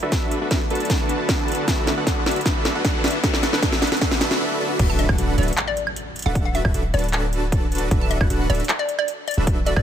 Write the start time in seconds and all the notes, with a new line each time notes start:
Already playing: D3 A3 B3 E4 F#4, riser
0.03 D1 D4 F#4 A4 B4 E5
0.12 kick, snare, closed hi-hat
0.31 closed hi-hat
0.41 D1 D4 F#4 A4 B4 E5
0.51 D4 F#4 A4 B4 E5, kick, snare, closed hi-hat
0.70 D1 D4 F#4 A4 B4 A5, closed hi-hat
0.75 closed hi-hat
0.80 closed hi-hat
0.85 closed hi-hat
0.90 kick, snare, closed hi-hat
1.09 closed hi-hat
1.29 kick, snare, closed hi-hat
1.48 closed hi-hat
1.52 closed hi-hat
1.55 closed hi-hat
1.68 D4, kick, snare, closed hi-hat
1.87 snare, closed hi-hat
1.97 D1 D4 F#4 A4 B4 F#5
2.07 D4 F#4 A4 B4 F#5, kick, snare, closed hi-hat
2.26 D1 D4 F#4 A4 B4 E5, snare, closed hi-hat
2.31 closed hi-hat
2.36 closed hi-hat
2.41 closed hi-hat
2.46 D4 F#4 A4 B4 E5, kick, snare, closed hi-hat
2.65 snare, closed hi-hat
2.75 D1 D4 F#4 A4 B4 F#5
2.85 D4 F#4 A4 F#5, kick, snare, closed hi-hat
3.04 D1 D4 F#4 A4 B4 E5, snare, closed hi-hat
3.07 closed hi-hat
3.11 closed hi-hat
3.24 D4 F#4 A4 B4 E5, kick, snare, closed hi-hat
3.34 snare
3.43 snare, closed hi-hat
3.53 D1 D4 F#4 A4 B4 F#5, snare
3.62 D4 F#4 A4 E5, kick, snare, closed hi-hat
3.72 snare
3.82 snare, closed hi-hat
3.87 closed hi-hat
3.92 D1 D4 F#4 A4 B4 F#5, snare, closed hi-hat
3.97 closed hi-hat
4.01 D4 F#4 A4 B4 E5, kick, snare, closed hi-hat
4.11 snare
4.21 D4 F#4 A4 B4 E5, snare, closed hi-hat
4.31 snare
4.41 D4 F#4 A4 B4 E5
4.60 D4 F#4 A4 B4 E5
4.79 D1 D4 F#4 A4 B4 E5, kick, closed hi-hat, crash, impact
4.90 A5
4.99 E5, closed hi-hat
5.09 D1 D4 F#4 A4 B4 F#5, kick, high woodblock
5.18 D1 D4 F#4 A4 B4 F#5, closed hi-hat
5.38 D1 D4 F#4 A4 B4 D5 E5, closed hi-hat
5.43 closed hi-hat
5.48 closed hi-hat
5.53 closed hi-hat
5.57 clap, closed hi-hat
5.68 D5
5.77 closed hi-hat
5.87 high woodblock
5.96 closed hi-hat
6.16 closed hi-hat
6.19 closed hi-hat
6.22 D1 D4 F#4 A4 B4 E5 F#5, closed hi-hat
6.35 kick, closed hi-hat
6.45 F#5
6.55 E5, closed hi-hat
6.65 D1 D4 F#4 A4 B4 E5, kick, high woodblock
6.74 D1 D4 F#4 A4 B4 E5, closed hi-hat
6.94 D1 D4 F#4 A4 B4 D5 A5, closed hi-hat
6.99 closed hi-hat
7.04 closed hi-hat
7.08 closed hi-hat
7.13 clap, closed hi-hat
7.33 closed hi-hat
7.52 kick, closed hi-hat
7.72 closed hi-hat
7.75 closed hi-hat
7.78 closed hi-hat
7.91 D1 D4 F#4 A4 B4 E5, kick, closed hi-hat
8.01 A5
8.11 E5, closed hi-hat
8.21 D1 D4 F#4 B4 F#5, kick, high woodblock
8.30 D1 D4 F#4 A4 B4 F#5, closed hi-hat
8.50 D1 D4 F#4 A4 B4 D5 E5, closed hi-hat
8.55 closed hi-hat
8.60 closed hi-hat
8.64 closed hi-hat
8.69 clap, closed hi-hat
8.79 D5
8.89 closed hi-hat
8.99 D5, high woodblock
9.08 closed hi-hat
9.28 D5, closed hi-hat
9.31 closed hi-hat
9.34 D1 D4 F#4 A4 B4 E5, closed hi-hat
9.47 kick, closed hi-hat
9.66 D5, closed hi-hat
9.76 D1 D4 F#4 A4 B4 D5 E5, kick, high woodblock